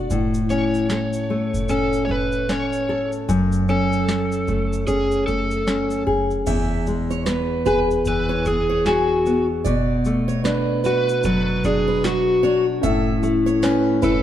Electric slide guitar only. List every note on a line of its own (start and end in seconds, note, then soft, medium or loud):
0.50 1.73 C#5 medium
1.71 2.02 A4 medium
2.05 2.10 C#5 medium
2.11 2.51 B4 medium
2.52 3.10 C#5 medium
3.70 4.85 A4 medium
4.87 5.26 G#4 medium
5.27 6.03 A4 medium
7.67 7.78 B4 medium
8.08 8.44 B4 loud
8.47 8.87 G#4 medium
8.87 9.46 F#4 medium
10.86 11.24 B4 medium
11.26 11.62 B4 loud
11.66 12.02 G#4 medium
12.06 12.64 F#4 medium
14.04 14.23 A4 medium